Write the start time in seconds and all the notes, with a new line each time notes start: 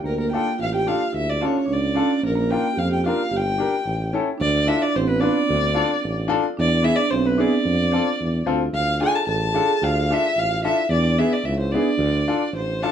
0.04 D2 A#3 A#4
0.18 A#3 A#4
0.32 D4 F4 A4 G5
0.58 A1 F4 F5
0.72 G4 G5
0.87 D4 F4 A4 F5
1.13 D2 E4
1.17 E5
1.30 D5
1.41 C#4 D4 F4 A4
1.46 C#5
1.66 C#2 D4
1.73 D5
1.95 C#4 D4 F4 A4
2.20 A#1 A#3
2.26 A#4
2.35 A#3 A#4
2.51 D4 F4 A#4 G5
2.72 F4 G4
2.77 F2 F5
2.90 G4 G5
3.04 D4 F4 A#4 F5
3.31 G1 G4
3.36 G5
3.58 D4 G4 A#4
3.86 A1
4.13 C#4 E4 A4
4.38 D2 D4 D5
4.66 D4 E4 F4 A4 E5
4.82 D4 D5
4.95 A1 C4 C5
5.07 B3 B4
5.20 D4 F4 B4 D5
5.49 D2
5.74 D4 F4 A4
6.04 A1
6.28 D4 F4 A4
6.57 E2 D4 D5
6.82 B3 E4 G#4 E5
6.96 D4 D5
7.11 B1 C4 C5
7.26 B3 B4
7.38 B3 D4 E4 G#4 D5
7.65 F2
7.92 C4 F4 A4
8.20 E2
8.46 D2 C4 F4 A4
8.73 D2 F4 F5
9.01 D4 F4 G#4 A4 G#5
9.14 A4 A5
9.27 A1 A4 A5
9.53 D4 F4 G#4 A4
9.63 A4
9.68 G#4
9.76 G#4
9.82 D2 F4 F5
10.11 D4 F4 A4 E5
10.36 A1 F4 F5
10.64 D4 E4 F4 A4 E5
10.85 E2 E4
10.92 D4 D5
11.18 B3 E4 G#4 E5
11.33 D5
11.44 C#2 E4 E5
11.60 C5
11.68 E4 D5
11.73 B3 D4 E4 G#4
11.98 D2
12.28 D4 F4 A4
12.52 A1 C5
12.83 D4 F4 A4 A5